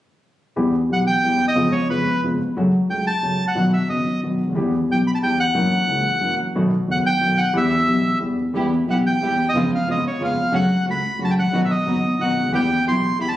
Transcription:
0.56 E2 E3 G3 B3 G4
0.89 B1 B2 E3 G3 B3 G4 F#5
1.07 G5
1.23 E2 E3 G3 B3 G4
1.48 D#5
1.55 F2 C#3 F3 G#3 B3 F4
1.72 C#5
1.89 F2 C#3 F3 G#3 B3 F4 B4
2.23 F2 C#3 F3 G#3 B3 F4
2.57 F#2 C#3 F#3 A3 F#4
2.89 C#2 C#3 F#3 A3 F#4 G5
3.07 A5
3.23 F#2 C#3 F#3 A3 F#4
3.48 F#5
3.55 B1 B2 D#3 F#3 B3 F#4
3.73 E5
3.89 F#1 F#2 D#3 F#3 B3 F#4 D#5
4.23 B1 B2 D#3 F#3 B3 F#4
4.44 C#2
4.49 D2 D#2
4.55 E2 E3 G3 B3 G4
4.89 B1 B2 E3 G3 B3 G4 G5
5.07 B5
5.15 A5
5.22 E2 E3 G3 B3 G4 G5
5.40 F#5
5.55 F#2 E3 F#3 A#3 C#4 F#4
5.88 C#2 C#3 E3 A#3 C#4 F#4
6.21 F#2 E3 F#3 A#3 C#4 F#4
6.55 B1 B2 D#3 A3 B3 F#4
6.87 F#1 F#2 D#3 A3 B3 F#4
6.91 F#5
7.06 G5
7.21 B1 B2 D#3 A3 B3 F#4
7.38 F#5
7.53 E2 E3 G3 B3 G4 E5
7.86 B1 B2 E3 G3 B3 G4
8.20 E2 E3 G3 B3 G4
8.53 E2 E3 G3 B3 E4 G4
8.86 B1 B2 E3 G3 B3 E4 G4
8.91 F#5
9.06 G5
9.20 E2 E3 G3 B3 E4 G4
9.49 D#5
9.54 F2 C#3 F3 G#3 B3 C#4 F4
9.75 F5
9.86 F2 C#3 F3 G#3 B3 C#4 F4
9.91 D#5
10.07 C#5
10.19 F2 C#3 F3 G#3 B3 C#4 F4
10.25 F5
10.52 F#2 C#3 F#3 A3 C#4 F#4 F#5
10.85 C#2 C#3 F#3 A3 C#4 F#4
10.91 B5
11.19 F#2 C#3 F#3 A3 C#4 F#4
11.24 A5
11.31 G5
11.39 G#1 F#5
11.44 A1
11.50 A#1 B1 B2 D#3 F#3 B3 F#4
11.54 B3 D#4 F#4
11.65 E5
11.71 D#5
11.86 F#1 F#2 D#3 F#3 B3 D#4 F#4
12.19 B1 B2 D#3 F#3 B3 D#4 F#4 F#5
12.39 C#2 D2
12.48 D#2
12.52 E2 E3 G3 B3 E4 G4 G5
12.86 B1 B2 E3 G3 B3 E4 G4 C6
13.18 E2 E3 G3 B3 E4 G4 B5
13.28 A5

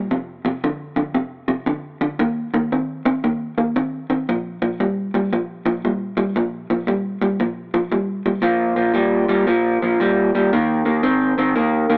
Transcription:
0.11 F2 C3
0.45 F2 C3
0.64 F2 D3
0.96 F2 D3
1.15 F2 C3
1.48 F2 C3
1.66 F2 D3
2.01 F2 D3
2.19 D#3 A#3
2.54 D#3 A#3
2.72 D#3 C4
3.06 D#3 C4
3.24 D#3 A#3
3.58 D#3 A#3
3.76 D#3 C4
4.10 D#3 C4
4.29 A#2 F3
4.62 A#2 F3
4.80 A#2 G3
5.14 A#2 G3
5.33 A#2 F3
5.66 A#2 F3
5.85 A#2 G3
6.17 A#2 G3
6.36 A#2 F3
6.70 A#2 F3
6.87 A#2 G3
7.22 A#2 G3
7.40 A#2 F3
7.74 A#2 F3
7.92 A#2 G3
8.26 A#2 G3
8.42 A#2 F3
8.76 A#2 F3
8.94 A#2 G3
9.29 A#2 G3
9.47 A#2 F3
9.82 A#2 F3
10.00 A#2 G3
10.35 A#2 G3
10.53 D#3 A#3
10.85 D#3 A#3
11.03 D#3 C4
11.38 D#3 C4
11.56 D#3 A#3
11.90 D#3 A#3

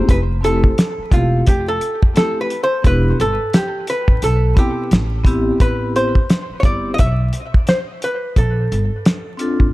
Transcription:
Already playing: A3 C4 E4 G4 C5
0.09 F1 B4, kick, closed hi-hat
0.41 A3 C4 E4 G4 A4, closed hi-hat
0.64 kick
0.78 snare, closed hi-hat
0.98 muted upright bass stroke
1.10 E1 A3 C4 E4 F4 G4, kick, closed hi-hat
1.47 F1 G4, kick, closed hi-hat
1.68 A4
1.81 closed hi-hat
2.03 kick
2.14 A3 C4 E4 G4 A4, snare, closed hi-hat
2.41 B4
2.50 closed hi-hat
2.63 C5
2.82 E1 B3 D4 E4 G4, kick, closed hi-hat
2.86 B4
3.20 G1 A4, closed hi-hat
3.53 G4, snare, closed hi-hat
3.87 B4, closed hi-hat
4.08 A1, kick
4.22 B1 A4, closed hi-hat
4.55 B3 C4 E4 G4, kick, closed hi-hat
4.91 A1, snare, closed hi-hat
5.24 B3 C4 E4 G4, kick, closed hi-hat
5.58 A1 B3 C4 E4 B4, kick, closed hi-hat
5.96 C5, closed hi-hat
6.15 kick
6.30 snare, closed hi-hat
6.50 muted upright bass stroke
6.60 G1 B3 C4 C#5, kick, closed hi-hat
6.64 E4 G4 D5
6.94 D#5
6.98 B1 E5, kick, closed hi-hat
7.33 closed hi-hat
7.54 kick
7.67 C5, snare, closed hi-hat
8.02 B4, closed hi-hat
8.36 A#1 A4, kick, closed hi-hat
8.72 G1, closed hi-hat
9.06 snare, closed hi-hat
9.38 C4 D4 F4 A4, closed hi-hat
9.60 A1, kick

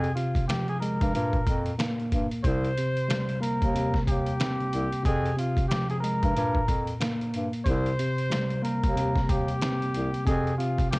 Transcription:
Already playing: C3 G#4
0.04 closed hi-hat
0.15 C3 F4, closed hi-hat
0.35 kick, closed hi-hat
0.48 F3 G4, snare, closed hi-hat
0.68 G#4, closed hi-hat
0.80 G#3 A#4, closed hi-hat
1.01 G2, kick, closed hi-hat
1.14 G2 A#2, closed hi-hat
1.33 kick, closed hi-hat
1.47 F2, kick, closed hi-hat
1.66 closed hi-hat
1.79 A#3, snare, closed hi-hat
2.00 closed hi-hat
2.12 G2, kick, closed hi-hat
2.32 closed hi-hat
2.44 C2 C3 C5, kick, closed hi-hat
2.65 closed hi-hat
2.78 C3, closed hi-hat
2.97 closed hi-hat
3.09 G3, snare, closed hi-hat
3.29 closed hi-hat
3.41 A#3 A#4, closed hi-hat
3.62 D#2, kick, closed hi-hat
3.74 C3, closed hi-hat
3.94 kick, snare
4.07 D#2 G4, kick, closed hi-hat
4.26 closed hi-hat
4.40 C4, snare, closed hi-hat
4.61 closed hi-hat
4.73 C2, closed hi-hat
4.92 closed hi-hat
5.03 F2 C3 G#4, kick, closed hi-hat
5.25 closed hi-hat
5.37 C3 F4, closed hi-hat
5.57 kick, closed hi-hat
5.68 F3 G4, snare, closed hi-hat
5.90 G#4, closed hi-hat
6.00 G#3 A#4, closed hi-hat
6.23 G2, kick, closed hi-hat
6.36 G2 A#2, closed hi-hat
6.55 kick
6.68 F2, kick, closed hi-hat
6.87 closed hi-hat
7.00 A#3, snare, closed hi-hat
7.21 closed hi-hat
7.34 G2, closed hi-hat
7.53 closed hi-hat
7.65 C2 C3 C5, kick, closed hi-hat
7.86 closed hi-hat
7.99 C3, closed hi-hat
8.18 closed hi-hat
8.30 G3, snare, closed hi-hat
8.50 closed hi-hat
8.62 A#3 A#4, closed hi-hat
8.84 D#2, kick, closed hi-hat
8.96 C3, closed hi-hat
9.16 kick, snare
9.29 D#2 G4, kick, closed hi-hat
9.48 closed hi-hat
9.62 C4, snare, closed hi-hat
9.82 closed hi-hat
9.94 C2, closed hi-hat
10.14 closed hi-hat
10.25 F2 C3 G#4, kick, closed hi-hat
10.47 closed hi-hat
10.58 C3 F4, closed hi-hat
10.78 kick, closed hi-hat
10.91 F3 G4, snare, closed hi-hat

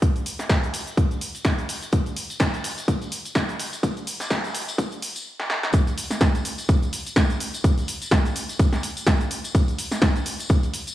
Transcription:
0.02 kick, closed hi-hat, tambourine, shaker
0.16 closed hi-hat, tambourine, shaker
0.26 open hi-hat, shaker
0.39 snare, closed hi-hat, tambourine, shaker
0.49 kick, snare, closed hi-hat, shaker
0.63 closed hi-hat, tambourine, shaker
0.74 open hi-hat, shaker
0.87 closed hi-hat, tambourine, shaker
0.97 kick, closed hi-hat, shaker
1.11 closed hi-hat, tambourine, shaker
1.21 open hi-hat, shaker
1.35 closed hi-hat, tambourine, shaker
1.45 kick, snare, closed hi-hat, shaker
1.59 closed hi-hat, tambourine, shaker
1.69 open hi-hat, shaker
1.82 closed hi-hat, tambourine, shaker
1.92 kick, closed hi-hat, tambourine, shaker
2.06 closed hi-hat, tambourine, shaker
2.16 open hi-hat, shaker
2.30 closed hi-hat, tambourine, shaker
2.40 kick, snare, closed hi-hat, shaker
2.54 closed hi-hat, tambourine, shaker
2.64 open hi-hat, shaker
2.78 closed hi-hat, tambourine, shaker
2.88 kick, closed hi-hat, tambourine, shaker
3.02 closed hi-hat, tambourine, shaker
3.12 open hi-hat, shaker
3.25 closed hi-hat, tambourine, shaker
3.35 kick, snare, closed hi-hat, shaker
3.48 closed hi-hat, tambourine, shaker
3.59 open hi-hat, shaker
3.73 closed hi-hat, tambourine, shaker
3.83 kick, closed hi-hat, tambourine, shaker
3.97 closed hi-hat, tambourine, shaker
4.07 open hi-hat, shaker
4.20 snare, closed hi-hat, tambourine, shaker
4.30 kick, snare, closed hi-hat, shaker
4.44 closed hi-hat, tambourine, shaker
4.55 open hi-hat, shaker
4.68 closed hi-hat, tambourine, shaker
4.78 kick, closed hi-hat, tambourine, shaker
4.91 closed hi-hat, tambourine, shaker
5.02 open hi-hat, shaker
5.16 closed hi-hat, tambourine, shaker
5.40 snare
5.50 snare
5.63 snare
5.73 kick, closed hi-hat, tambourine, shaker
5.87 closed hi-hat, tambourine, shaker
5.98 open hi-hat, shaker
6.11 snare, closed hi-hat, tambourine, shaker
6.21 kick, snare, closed hi-hat, tambourine, shaker
6.35 closed hi-hat, tambourine, shaker
6.45 open hi-hat, shaker
6.58 closed hi-hat, tambourine, shaker
6.69 kick, closed hi-hat, tambourine, shaker
6.83 closed hi-hat, tambourine, shaker
6.93 open hi-hat, shaker
7.06 closed hi-hat, tambourine, shaker
7.16 kick, snare, closed hi-hat, tambourine, shaker
7.30 closed hi-hat, tambourine, shaker
7.40 open hi-hat, shaker
7.54 closed hi-hat, tambourine, shaker
7.64 kick, closed hi-hat, shaker
7.78 closed hi-hat, tambourine, shaker
7.88 open hi-hat, shaker
8.02 closed hi-hat, tambourine, shaker
8.11 kick, snare, closed hi-hat, shaker
8.25 closed hi-hat, tambourine, shaker
8.36 open hi-hat, shaker
8.49 closed hi-hat, tambourine, shaker
8.59 kick, closed hi-hat, tambourine, shaker
8.73 snare, closed hi-hat, tambourine, shaker
8.83 open hi-hat, shaker
8.97 closed hi-hat, tambourine, shaker
9.07 kick, snare, closed hi-hat, tambourine, shaker
9.21 closed hi-hat, tambourine, shaker
9.31 open hi-hat, shaker
9.44 closed hi-hat, tambourine, shaker
9.55 kick, closed hi-hat, tambourine, shaker
9.68 closed hi-hat, tambourine, shaker
9.79 open hi-hat, shaker
9.92 snare, closed hi-hat, tambourine, shaker
10.02 kick, snare, closed hi-hat, shaker
10.16 closed hi-hat, tambourine, shaker
10.26 open hi-hat, shaker
10.39 closed hi-hat, tambourine, shaker
10.49 kick, closed hi-hat, tambourine, shaker
10.63 closed hi-hat, tambourine, shaker
10.74 open hi-hat, shaker
10.87 closed hi-hat, tambourine, shaker

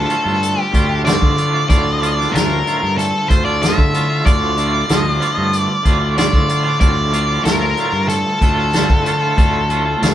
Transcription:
Already playing: D2 F4 A4
0.08 A2 D3 A3 F4, closed hi-hat
0.24 G2 D3 A3 F4
0.43 closed hi-hat
0.62 G4
0.72 D2 A2 D3 A3 F4, kick, closed hi-hat
0.88 D3 A3 F4
1.04 D2 A2 D3 A3 F4 D5, snare, closed hi-hat
1.22 D3, kick
1.36 A2 D3 A3 F4, closed hi-hat
1.53 D3 A3 F4
1.68 D2 A2 D3 A3 F4 D5, kick, closed hi-hat
2.01 A2 D3 A3 F4, closed hi-hat
2.17 D3 A3 F4, snare
2.33 D2 A2 D3 A3 F4 A#4, snare, closed hi-hat
2.50 D3 A3 F4
2.65 A2 D3 A3 F4, closed hi-hat
2.82 G2 D3 A3 F4
2.98 A4, closed hi-hat
3.28 D2 A2 D3 A3 F4 C5, kick, closed hi-hat
3.45 D3 A3 F4 D5
3.61 D2 A2 D3 A3 F4 E5, snare, closed hi-hat
3.78 D3, kick
3.93 A2 D3 A3 F4, closed hi-hat
4.10 D3 A3 F4
4.24 D2 A2 D3 A3 F4 D5, kick, closed hi-hat
4.57 A2 D3 A3 F4, closed hi-hat
4.73 D3 A3 F4
4.89 D2 A2 D3 A3 F4, snare, closed hi-hat
4.95 D#5
5.05 D3 F4
5.14 D5
5.20 A2 D3 A3 F4, closed hi-hat
5.35 G2 D3 A3 F4 D#5
5.53 D5, closed hi-hat
5.83 D2 A2 D3 A3 F4, kick, closed hi-hat
5.99 D3 A3 F4
6.17 D2 A2 D3 A3 F4 D5, snare, closed hi-hat
6.33 D3, kick
6.48 A2 D3 A3 F4, closed hi-hat
6.64 D3 A3 F4
6.79 D2 A2 D3 A3 F4 D5, kick, closed hi-hat
7.11 A2 D3 A3 F4, closed hi-hat
7.28 D3 A3 F4
7.45 D2 A2 D3 A3 F4 A#4, snare, closed hi-hat
7.61 D3 A3 F4
7.77 A2 D3 A3 F4, closed hi-hat
7.92 G2 D3 A3 F4
8.09 A4, closed hi-hat
8.41 D2 A2 D3 A3 F4, kick, closed hi-hat
8.57 D3 A3 F4
8.73 D2 A2 D3 A3 F4, snare, closed hi-hat
8.90 D3, kick
9.05 A2 D3 A3 F4, closed hi-hat
9.20 D3 A3 F4
9.36 D2 A2 D3 A3 F4, kick, closed hi-hat
9.69 A2 D3 A3 F4, closed hi-hat
9.85 D3 A3 F4
10.01 D2 A2 D3 A3 F4, snare, closed hi-hat

